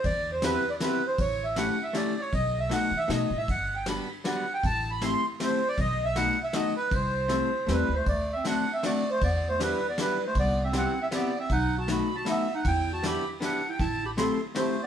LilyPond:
<<
  \new Staff \with { instrumentName = "Accordion" } { \time 3/4 \key e \minor \tempo 4 = 157 \tuplet 3/2 { d''4 c''8 b'4 d''8 b'4 c''8 } | \tuplet 3/2 { cis''4 e''8 fis''4 e''8 d''4 cis''8 } | \tuplet 3/2 { dis''4 e''8 fis''4 e''8 dis''4 e''8 } | \tuplet 3/2 { fis''4 g''8 } b''8 r8 \tuplet 3/2 { fis''4 g''8 } |
\tuplet 3/2 { a''4 b''8 } c'''8 r8 \tuplet 3/2 { c''4 d''8 } | \tuplet 3/2 { dis''4 e''8 fis''4 e''8 } dis''8 b'8 | c''2 \tuplet 3/2 { b'4 c''8 } | \tuplet 3/2 { d''4 e''8 fis''4 e''8 d''4 c''8 } |
\tuplet 3/2 { d''4 c''8 b'4 d''8 b'4 c''8 } | \tuplet 3/2 { d''4 e''8 fis''4 e''8 d''4 e''8 } | \tuplet 3/2 { fis''4 a''8 b''4 a''8 e''4 fis''8 } | \tuplet 3/2 { g''4 a''8 } b''8 r8 \tuplet 3/2 { fis''4 g''8 } |
\tuplet 3/2 { a''4 b''8 } c'''8 r8 \tuplet 3/2 { c''4 d''8 } | }
  \new Staff \with { instrumentName = "Hollow-body jazz guitar" } { \time 3/4 \key e \minor r4 <b c' e' g'>8 r8 <b c' e' g'>8 r8 | r4 <a cis' e' g'>8 r8 <a cis' e' g'>8 r8 | r4 <a b dis' fis'>8 r8 <a b dis' fis'>8 r8 | r4 <g b d' fis'>8 r8 <g b d' fis'>8 r8 |
r4 <a c' e' g'>8 r8 <a c' e' g'>8 r8 | r4 <a b dis' fis'>8 r8 <a b dis' fis'>8 r8 | r4 <a c' e' g'>8 r8 <a c' e' g'>8 r8 | r4 <a c' d' fis'>8 r8 <a c' d' fis'>8 r8 |
r4 <b d' e' g'>8 r8 <b d' e' g'>8 r8 | r4 <b c' e' g'>8 r8 <b c' e' g'>8 r8 | r4 <a b dis' fis'>8 r8 <a b dis' fis'>8 r8 | r4 <b d' e' g'>8 r8 <b d' e' g'>8 r8 |
r4 <a c' e' g'>8 r8 <a c' e' g'>8 r8 | }
  \new Staff \with { instrumentName = "Clarinet" } { \time 3/4 \key e \minor r2. | r2. | r2. | r2. |
r2. | r2. | r2 \tuplet 3/2 { g4 a8 } | \tuplet 3/2 { a4 c'8 d'4 c'8 a4 a8 } |
\tuplet 3/2 { b4 a8 g4 b8 g4 a8 } | \tuplet 3/2 { b4 c'8 c'4 c'8 b4 c'8 } | \tuplet 3/2 { dis'4 fis'8 fis'4 fis'8 b4 dis'8 } | \tuplet 3/2 { e'4 fis'8 } g'8 r8 \tuplet 3/2 { d'4 e'8 } |
\tuplet 3/2 { e'4 g'8 } a'8 r8 \tuplet 3/2 { a4 b8 } | }
  \new Staff \with { instrumentName = "Upright bass" } { \clef bass \time 3/4 \key e \minor e,2 r4 | a,,2 r4 | b,,4. dis8 b,8 a,8 | g,,2 r4 |
a,,2 r4 | b,,2 r4 | c,2 e,8 d,8 | d,2 r4 |
e,2 r4 | c,2 r4 | b,,2 r4 | e,2 r4 |
a,,2 r4 | }
  \new DrumStaff \with { instrumentName = "Drums" } \drummode { \time 3/4 <bd cymr>4 <cymr sn>4 <cymr sn>4 | <bd cymr>4 <cymr sn>4 <cymr sn>4 | <bd cymr>4 <cymr sn>4 <cymr sn>4 | <bd cymr>4 <cymr sn>4 <cymr sn>4 |
<bd cymr>4 <cymr sn>4 <cymr sn>4 | <bd cymr>4 <cymr sn>4 <cymr sn>4 | <bd cymr>4 <cymr sn>4 <cymr sn>4 | <bd cymr>4 <cymr sn>4 <cymr sn>4 |
<bd cymr>4 <cymr sn>4 <cymr sn>4 | <bd cymr>4 <cymr sn>4 <cymr sn>4 | <bd cymr>4 <cymr sn>4 <cymr sn>4 | <bd cymr>4 <cymr sn>4 <cymr sn>4 |
<bd cymr>4 <cymr sn>4 <cymr sn>4 | }
>>